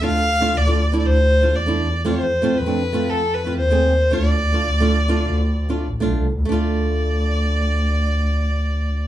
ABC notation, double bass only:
X:1
M:4/4
L:1/16
Q:1/4=111
K:Dm
V:1 name="Double bass" clef=bass
D,,4 D,,4 D,,4 E,,4 | F,,4 F,,4 F,,4 _E,,4 | D,,4 D,,4 D,,4 A,,, =B,,, C,, D,, | D,,16 |]